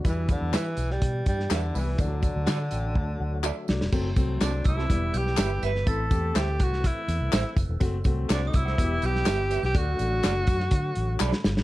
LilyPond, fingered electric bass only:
\new Staff \with { instrumentName = "Fingered electric bass" } { \clef bass \time 4/4 \key e \minor \tempo 4 = 124 e,8. e,16 e8 b,,8 b,8 g,8 e,8 c,8 | d,8. d,16 d8 a,,8 d,8 d,8. r16 c,16 e,,16 | fis,,8 c,8 c,8 c,8 e,,8 b,,8 g,,8 g,,8 | a,,8 e,8 d,8 c,8. r16 e,16 c,16 a,,16 r16 fis,,16 e,,16 |
fis,,8 c,8 c,8 c,8 e,,8 b,,8 g,,8. b,,16 | d,8 a,,8 fis,,8 fis,8 d8 a,,8 b,,16 r16 g,,16 a,,16 | }